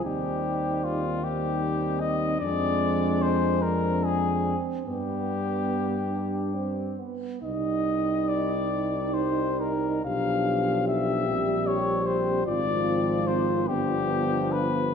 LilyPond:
<<
  \new Staff \with { instrumentName = "Cornet" } { \time 6/8 \key c \minor \tempo 4. = 49 g'4 f'8 g'4 ees''8 | d''4 c''8 bes'8 aes'8 r8 | g'2~ g'8 r8 | ees''4 d''4 c''8 bes'8 |
f''4 e''4 des''8 c''8 | d''4 c''8 g'4 b'8 | }
  \new Staff \with { instrumentName = "Euphonium" } { \time 6/8 \key c \minor ees'4. ees'4. | d'4. d'4 r8 | b2~ b16 r8. | ees'2. |
g'2. | f'4. d'4 r8 | }
  \new Staff \with { instrumentName = "French horn section" } { \time 6/8 \key c \minor c'4. c'4. | c'2. | b4. d'8 c'8 b8 | ees'2. |
d'4. c'4. | c'4. b4. | }
  \new Staff \with { instrumentName = "Trombone" } { \clef bass \time 6/8 \key c \minor g4. g4. | aes2~ aes8 r8 | g2~ g8 r8 | g2. |
f4. g4. | f4. f4. | }
  \new Staff \with { instrumentName = "Tuba" } { \clef bass \time 6/8 \key c \minor ees,2. | f,2~ f,8 r8 | g,2~ g,8 r8 | c,2. |
b,,4. bes,,4. | aes,,4. g,,4. | }
>>